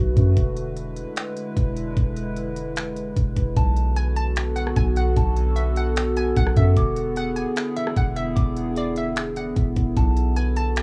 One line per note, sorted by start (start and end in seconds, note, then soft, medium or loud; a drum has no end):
0.00 0.16 B1 loud
0.00 0.33 D3 medium
0.00 0.33 A3 medium
0.00 0.33 F#4 medium
0.00 0.33 B4 medium
0.17 0.36 F#2 loud
0.17 kick medium
0.17 closed hi-hat medium
0.36 1.04 E1 loud
0.36 3.53 D3 medium
0.36 3.53 G#3 medium
0.36 3.53 E4 medium
0.36 3.53 B4 medium
0.36 kick loud
0.36 closed hi-hat medium
0.57 closed hi-hat medium
0.77 closed hi-hat medium
0.96 closed hi-hat medium
1.16 finger snap loud
1.16 closed hi-hat medium
1.37 closed hi-hat medium
1.57 1.95 E1 loud
1.57 kick loud
1.57 closed hi-hat medium
1.77 closed hi-hat medium
1.97 3.13 E1 loud
1.97 kick loud
1.97 closed hi-hat medium
2.17 closed hi-hat medium
2.36 closed hi-hat medium
2.56 closed hi-hat medium
2.76 finger snap loud
2.76 closed hi-hat medium
2.96 closed hi-hat medium
3.17 3.36 E1 loud
3.17 kick loud
3.17 closed hi-hat medium
3.36 3.56 E1 loud
3.36 kick medium
3.36 closed hi-hat medium
3.56 4.73 B1 loud
3.56 6.73 D3 medium
3.56 10.82 B3 medium
3.56 6.73 F#4 medium
3.56 6.73 A4 medium
3.56 4.77 A5 loud
3.56 kick loud
3.56 closed hi-hat medium
3.77 closed hi-hat medium
3.96 5.16 B4 medium
3.96 4.16 G#5 medium
3.96 closed hi-hat medium
4.16 4.54 A5 medium
4.16 closed hi-hat medium
4.36 finger snap loud
4.36 closed hi-hat medium
4.56 5.77 B3 medium
4.56 4.75 F#5 medium
4.56 closed hi-hat medium
4.67 cross-stick medium
4.76 5.15 B1 loud
4.76 4.96 G#5 medium
4.76 kick loud
4.76 closed hi-hat medium
4.96 5.16 F#5 medium
4.96 closed hi-hat medium
5.17 6.33 B1 loud
5.17 6.37 A5 loud
5.17 kick loud
5.17 closed hi-hat medium
5.37 closed hi-hat medium
5.56 6.77 B4 medium
5.56 5.75 E5 medium
5.56 closed hi-hat medium
5.76 6.15 F#5 medium
5.76 closed hi-hat medium
5.96 finger snap loud
5.96 closed hi-hat medium
6.17 6.77 B3 medium
6.17 6.36 G#5 medium
6.17 closed hi-hat medium
6.36 6.56 B1 loud
6.36 6.56 F#5 medium
6.36 kick loud
6.36 closed hi-hat medium
6.47 cross-stick medium
6.56 6.76 F#2 loud
6.56 6.76 E5 medium
6.56 kick medium
6.56 closed hi-hat medium
6.76 7.44 E1 loud
6.76 9.93 D3 medium
6.76 9.93 E4 medium
6.76 9.93 G#4 medium
6.76 7.97 D6 loud
6.76 kick loud
6.76 closed hi-hat medium
6.96 closed hi-hat medium
7.16 8.37 G#4 loud
7.16 7.36 F#5 loud
7.16 closed hi-hat medium
7.36 7.74 G#5 medium
7.36 closed hi-hat medium
7.56 finger snap loud
7.56 closed hi-hat medium
7.76 8.97 E3 medium
7.76 7.96 E5 medium
7.76 closed hi-hat medium
7.87 cross-stick medium
7.96 8.35 E1 loud
7.96 8.16 F#5 medium
7.96 kick loud
7.96 closed hi-hat medium
8.16 8.36 E5 medium
8.16 closed hi-hat medium
8.36 9.53 E1 loud
8.36 9.56 D6 loud
8.36 kick loud
8.36 closed hi-hat medium
8.56 closed hi-hat medium
8.76 9.97 G#4 loud
8.76 8.96 D5 medium
8.76 closed hi-hat medium
8.96 9.35 E5 medium
8.96 closed hi-hat medium
9.16 finger snap loud
9.16 closed hi-hat medium
9.36 9.96 E3 medium
9.36 9.93 F#5 medium
9.36 closed hi-hat medium
9.56 9.76 E1 loud
9.56 kick loud
9.56 closed hi-hat medium
9.76 9.96 E1 loud
9.76 kick medium
9.76 closed hi-hat medium
9.97 10.82 B1 loud
9.97 10.82 D3 medium
9.97 10.82 F#4 medium
9.97 10.82 A4 medium
9.97 10.82 A5 loud
9.97 kick loud
9.97 closed hi-hat medium
10.17 closed hi-hat medium
10.36 10.82 B4 medium
10.36 10.56 G#5 medium
10.36 closed hi-hat medium
10.56 10.82 A5 medium
10.56 closed hi-hat medium
10.76 finger snap loud
10.76 closed hi-hat medium